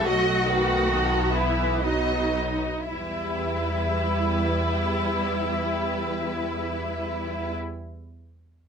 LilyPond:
<<
  \new Staff \with { instrumentName = "Violin section" } { \time 3/4 \key e \minor \tempo 4 = 62 fis''4. e''8 dis''4 | e''2.~ | e''2. | }
  \new Staff \with { instrumentName = "Violin section" } { \time 3/4 \key e \minor dis''8 b'8 a'8 b'8 dis''8 r8 | b'2.~ | b'2. | }
  \new Staff \with { instrumentName = "Cello section" } { \time 3/4 \key e \minor fis'4. e'8 dis'4 | e'2.~ | e'2. | }
  \new Staff \with { instrumentName = "Viola section" } { \clef bass \time 3/4 \key e \minor << { a4 b4 b8 r8 | e'2.~ | e'2. | } \\ { fis8 dis8 dis8 e8 fis8 r8 | g2.~ | g2. | } >> }
  \new Staff \with { instrumentName = "Double bass section" } { \clef bass \time 3/4 \key e \minor b,,2~ b,,8 r8 | e,2.~ | e,2. | }
>>